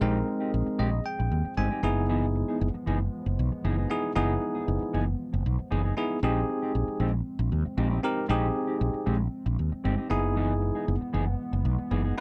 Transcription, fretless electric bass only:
0.01 A#1
0.54 A#1
0.67 muted fretless electric bass stroke
0.79 A#1
1.20 A#1
1.31 D#2
1.45 muted fretless electric bass stroke
1.57 G1
1.83 F#1
2.61 F#1
2.75 muted fretless electric bass stroke
2.87 F#1
3.26 F#1
3.39 B1
3.52 muted fretless electric bass stroke
3.65 F#1
4.16 F#1
4.68 F#1
4.82 muted fretless electric bass stroke
4.94 F#1
5.34 F#1
5.46 B1
5.59 muted fretless electric bass stroke
5.72 F#1
6.23 A#1
6.75 A#1
6.88 muted fretless electric bass stroke
7.00 A#1
7.39 A#1
7.52 D#2
7.66 muted fretless electric bass stroke
7.78 A#1
8.29 A#1
8.81 A#1
8.94 muted fretless electric bass stroke
9.07 A#1
9.46 A#1
9.59 D#2
9.72 muted fretless electric bass stroke
9.85 G1
10.11 F#1
10.88 F#1
11.02 muted fretless electric bass stroke
11.14 F#1
11.53 F#1
11.65 B1
11.79 muted fretless electric bass stroke
11.91 F#1

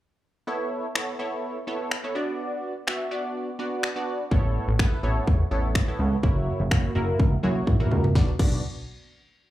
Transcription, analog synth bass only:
4.31 A1
4.68 A1
5.03 A1
5.27 E2
5.51 A1
5.99 C#2
6.23 F#1
6.60 F#1
6.95 F#1
7.20 C#2
7.43 F#2
7.67 E2
7.91 C#2
8.15 B1
8.39 B1

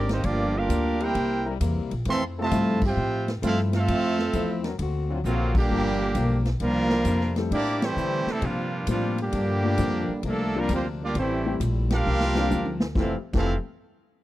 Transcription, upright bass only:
Already playing: G#1
0.24 G1
0.69 D2
1.15 C2
1.60 E2
1.76 C2
1.91 A#1
2.06 F2
2.51 G2
2.97 A2
3.42 G2
3.88 F2
4.33 E2
4.78 D2
5.24 A#1
5.70 G1
6.15 B1
6.60 C2
7.05 F2
7.51 A2
7.96 D3
8.26 muted upright bass stroke
8.42 C3
8.87 A2
9.33 G2
9.78 F2
10.08 muted upright bass stroke
10.23 C2
10.69 D2
11.15 A1
11.60 A#1
12.06 C2
12.51 D2
12.95 F1
13.33 F1

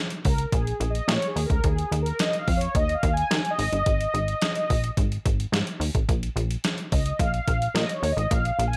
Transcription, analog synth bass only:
0.25 C#2
0.52 A#1
0.80 A#1
1.08 A#2
1.36 D#2
1.50 D2
1.64 D#2
1.91 D#2
2.48 F2
2.75 D#2
3.03 D#2
3.31 D#3
3.58 G#1
3.72 G1
3.86 G#1
4.14 G#1
4.70 A#1
4.97 G#1
5.25 G#1
5.52 G#2
5.80 D#2
5.95 A1
6.09 A#1
6.36 A#1
6.92 C#2
7.19 A#1
7.48 A#1
7.75 A#2
8.03 D#2
8.17 A1
8.31 A#1
8.59 A#1

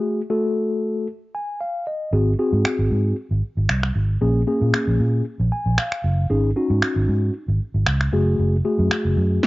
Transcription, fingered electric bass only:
2.13 G#1
2.53 G#2
2.79 G#1
2.91 G#2
3.31 G#1
3.57 G#1
3.69 C2
3.95 G#1
4.21 A#1
4.61 A#2
4.87 A#1
5.00 A#2
5.40 A#1
5.66 A#1
6.04 F#1
6.30 G#1
6.70 G#2
6.96 G#1
7.08 G#2
7.48 G#1
7.74 G#1
7.87 C#2
8.13 F#1
8.39 F#1
8.79 F#2
9.05 F#1
9.17 F#2

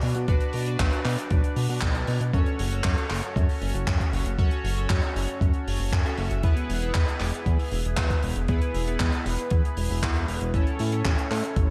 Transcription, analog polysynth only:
Already playing: D4 F#4 B4 D5
0.28 D4 F#4 B4 D5
0.67 D4 F#4 B4 D5
2.33 C#4 F#4 A4 C#5
2.72 C#4 F#4 A4 C#5
4.39 C#4 F#4 A4 C#5
4.77 C#4 F#4 A4 C#5
6.05 C#4 F#4 A4 E5
6.44 B3 E4 G#4 B4
6.82 B3 E4 G#4 B4
8.49 B3 E4 G#4 B4
8.87 B3 E4 G#4 B4
10.54 C#4 E4 A4 C#5
10.92 C#4 E4 A4 C#5

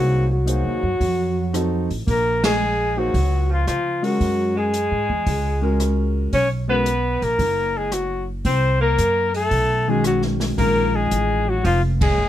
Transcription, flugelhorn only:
Already playing: F#4
0.34 F#4
2.09 A#4
2.45 G#4
2.98 F#4
3.52 F4
3.68 F4
4.03 F#4
4.58 G#4
6.34 C#5
6.69 B4
7.23 A#4
7.77 G#4
7.93 F#4
8.45 C5
8.82 A#4
9.36 A4
9.89 G#4
10.07 F#4
10.59 A#4
10.95 G#4
11.49 F#4
11.66 F4
12.02 G#4

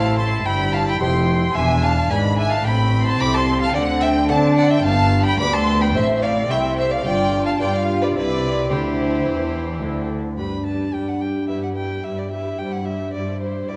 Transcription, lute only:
Already playing: A2 E4 G4 C5
0.46 G2
1.00 F2 E4 G4 C5
1.55 E2
2.10 G#2 D4 E4 B4
2.65 A2
3.19 C3 C4 E4 A4
3.74 D3
4.29 C4 D4 A4
4.84 G2
5.39 D2 B3 D4 G4
5.94 A2
6.49 C3 A3 C4 E4
7.05 G2
7.60 G3 B3 D4 F4
8.15 C3
8.71 D3 C4 E4
9.27 E3
9.82 D3 C4 E4
10.38 G2 B3 D4
10.93 G2
11.48 G2 B3 E4
12.04 G2
12.59 G2
13.13 G2
13.68 G2 C4 E4

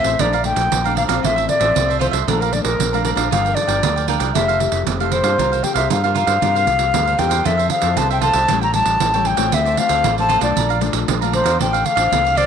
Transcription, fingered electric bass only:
0.05 A1
0.20 A#1
0.57 A#1
0.72 A#1
1.09 A#1
1.24 A1
1.61 A1
1.76 C2
2.13 C2
2.28 A#1
2.64 A#1
2.79 A#1
3.16 A#1
3.31 G1
3.68 G1
3.83 D2
4.20 C2
4.35 F1
4.72 F1
4.87 F1
5.23 G2
5.38 C2
5.75 C2
5.90 G2
6.27 G2
6.42 G2
6.67 C2
6.94 D2
7.19 E2
7.46 F2
7.82 F2
7.97 C2
8.34 C2
8.50 A1
8.86 A1
9.01 A1
9.38 A1
9.53 D2
9.90 D2
10.04 A1
10.41 B1
10.56 A#1
10.93 A#1
11.08 A#1
11.45 E2
11.60 A1
11.97 A1
12.12 C2

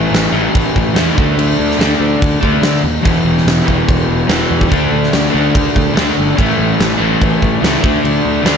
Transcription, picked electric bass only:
0.11 A1
0.32 A1
0.55 A1
0.76 A1
0.94 E2
1.18 D2
1.37 D2
1.59 D2
1.79 D2
2.00 D2
2.22 D2
2.42 D2
2.62 D2
2.83 D#2
3.06 E1
3.25 E1
3.45 E1
3.69 E1
3.89 E1
4.08 E1
4.29 E1
4.51 E2
4.72 D2
4.92 D2
5.13 D2
5.35 D2
5.55 D2
5.76 D2
5.97 D2
6.18 G1
6.39 A1
6.58 A1
6.80 A1
7.00 A1
7.22 A1
7.42 A1
7.62 C#2
7.83 D2
8.04 D2
8.25 D2
8.45 D2

